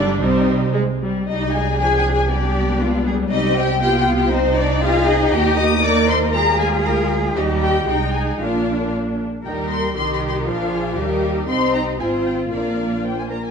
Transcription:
0.00 0.21 G1 medium
0.00 0.20 D3 medium
0.00 0.20 G3 medium
0.00 0.20 D4 medium
0.00 0.21 D4 medium
0.00 0.20 D5 medium
0.20 1.07 C2 medium
0.20 0.73 C3 medium
0.20 0.68 G3 medium
0.20 0.74 C4 medium
0.20 0.69 D#4 medium
0.20 0.73 C5 medium
0.74 0.82 G#3 medium
1.01 1.27 G3 medium
1.28 3.27 C2 medium
1.28 1.76 G3 medium
1.28 1.76 D#4 medium
1.28 1.52 D#4 medium
1.28 1.52 D#5 medium
1.53 1.78 G#4 medium
1.53 1.79 G#5 medium
1.79 2.26 F3 medium
1.79 2.27 D4 medium
1.79 1.86 G#4 medium
1.79 2.26 G#4 medium
1.79 1.96 G#5 loud
1.96 2.12 G#4 loud
1.96 2.04 G#5 loud
2.13 2.30 G#4 medium
2.13 2.30 G#5 medium
2.28 3.78 G3 medium
2.28 3.27 B3 medium
2.28 3.04 D4 medium
2.28 2.80 G4 medium
2.28 3.06 D5 medium
2.81 3.06 F4 medium
3.07 3.15 G#4 medium
3.31 5.29 C2 medium
3.31 3.78 C4 medium
3.31 3.54 D#4 medium
3.31 3.81 G4 medium
3.31 3.55 D#5 loud
3.56 3.79 G4 loud
3.56 3.81 G5 loud
3.80 4.29 B3 medium
3.80 4.29 F4 medium
3.80 4.31 F4 medium
3.80 3.96 G4 medium
3.80 3.98 G5 loud
3.97 4.04 G4 medium
3.97 4.15 G5 loud
4.14 4.31 G4 medium
4.14 4.32 G5 loud
4.31 4.57 C4 medium
4.31 5.29 C4 medium
4.31 4.83 D#4 medium
4.31 6.30 D#4 medium
4.31 4.57 C5 loud
4.57 4.82 D4 medium
4.57 4.82 D5 loud
4.82 5.07 F4 loud
4.82 5.32 G#4 loud
4.82 5.08 F5 loud
5.07 5.32 D#4 medium
5.07 5.33 D#5 loud
5.32 6.82 D#2 medium
5.32 6.30 A#3 medium
5.32 5.57 G4 loud
5.32 5.83 G4 medium
5.32 5.58 G5 loud
5.57 5.65 D#5 loud
5.57 5.83 D#6 loud
5.82 6.33 A#4 medium
5.82 6.08 D5 loud
5.82 6.09 D6 loud
6.08 6.34 C5 medium
6.08 6.17 C6 loud
6.34 7.32 G#3 medium
6.34 7.32 F4 medium
6.34 7.36 G#4 medium
6.34 6.59 A#4 medium
6.34 6.59 A#5 loud
6.59 6.67 G#4 medium
6.59 6.68 G#5 loud
6.84 7.36 D2 medium
6.84 7.09 A#4 medium
6.84 6.93 A#5 medium
7.35 7.84 D#2 medium
7.35 7.84 G3 medium
7.35 7.84 D#4 medium
7.35 7.44 D#4 medium
7.35 7.87 G4 medium
7.35 7.44 D#5 medium
7.61 7.86 G4 medium
7.61 7.86 G5 loud
7.87 8.40 C2 medium
7.87 8.40 G#3 medium
7.87 8.40 D#4 medium
7.87 8.39 D#4 medium
7.87 7.95 G4 medium
7.87 8.13 G5 loud
8.14 8.40 G#4 medium
8.14 8.40 G#5 medium
8.40 9.23 A#1 medium
8.40 9.25 A#3 medium
8.40 9.17 D4 medium
8.40 9.25 D4 medium
8.40 8.91 F4 medium
8.40 8.91 F5 medium
9.44 9.92 D#2 medium
9.44 9.93 G3 medium
9.44 9.92 D#4 medium
9.44 9.93 G4 medium
9.44 9.92 A#4 medium
9.44 10.43 A#4 medium
9.44 9.53 G5 medium
9.70 9.94 C6 medium
9.95 10.47 C2 medium
9.95 10.47 D#3 medium
9.95 10.46 D#4 medium
9.95 10.45 G4 medium
9.95 10.47 G4 medium
9.95 10.12 C6 medium
10.13 10.20 C6 medium
10.29 10.36 C6 medium
10.46 10.97 A#1 medium
10.46 10.97 F3 medium
10.46 10.98 D4 medium
10.46 10.97 F4 medium
10.46 10.72 A#4 medium
10.46 11.22 F5 medium
10.72 10.97 G#4 medium
10.97 11.49 D#2 medium
10.97 11.49 G3 medium
10.97 11.48 D#4 medium
10.97 11.47 G4 medium
10.97 11.48 A#4 medium
11.48 11.96 C2 medium
11.48 11.97 C4 medium
11.48 11.99 D#4 medium
11.48 11.97 D#4 medium
11.48 11.96 G4 medium
11.48 11.96 C5 medium
11.48 11.72 C6 loud
11.74 11.82 A#5 medium
12.00 12.52 G#1 medium
12.00 12.51 C4 medium
12.00 12.51 F4 medium
12.00 12.52 F4 medium
12.00 12.51 F4 medium
12.00 12.51 C5 medium
12.00 12.08 G#5 medium
12.26 12.34 G5 medium
12.51 13.36 A#1 soft
12.51 13.35 A#3 medium
12.51 13.31 D4 medium
12.51 13.34 F4 medium
12.51 12.99 A#4 medium
12.51 12.98 D5 soft
12.51 13.03 F5 medium
13.04 13.28 C5 medium
13.04 13.18 G5 medium
13.18 13.23 G#5 medium
13.30 13.51 A#4 medium
13.30 13.43 A#5 medium
13.44 13.49 G#5 medium

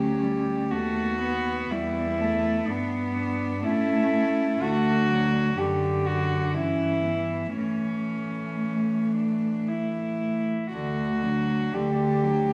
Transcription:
0.00 0.73 D2 soft
0.00 0.24 F#3 soft
0.00 0.73 C#4 soft
0.00 0.72 G4 soft
0.23 0.72 G3 soft
0.71 1.71 D#2 soft
0.71 1.21 A3 soft
0.71 2.67 B3 soft
0.71 1.72 F#4 medium
1.21 1.73 B3 soft
1.71 2.66 E2 soft
1.71 2.23 G3 soft
1.71 2.69 E4 medium
2.21 2.71 A3 soft
2.67 3.67 G2 soft
2.67 3.66 B3 soft
2.67 3.65 B3 soft
2.67 3.15 D4 medium
3.16 3.65 D4 medium
3.64 4.61 A2 soft
3.64 4.60 A3 soft
3.64 4.11 C#4 medium
3.64 4.63 E4 medium
4.12 4.62 C#4 soft
4.61 5.57 D2 medium
4.61 5.10 A3 soft
4.61 5.57 D4 medium
4.61 5.59 F#4 medium
5.11 5.61 F#3 soft
5.58 6.57 F#2 soft
5.58 6.57 D3 soft
5.58 6.56 D4 soft
5.58 6.08 G4 medium
6.06 6.56 F#4 medium
6.54 7.57 G2 soft
6.54 7.57 E3 soft
6.54 7.04 C#4 soft
6.54 7.57 E4 medium
7.05 7.57 B3 soft
7.56 10.48 A2 soft
7.56 10.48 E3 soft
7.56 10.51 A3 soft
7.56 9.12 C#4 soft
9.16 9.70 D4 soft
9.68 10.72 E4 soft
10.72 11.62 D2 soft
10.72 11.25 D3 soft
10.72 11.24 A3 soft
10.72 11.75 F#4 medium
11.23 11.75 F#3 soft
11.23 11.75 D4 soft
11.73 12.53 D2 soft
11.73 12.25 D3 soft
11.73 12.25 A3 soft
11.73 12.53 G4 medium
12.23 12.53 F#3 soft
12.23 12.53 D4 soft

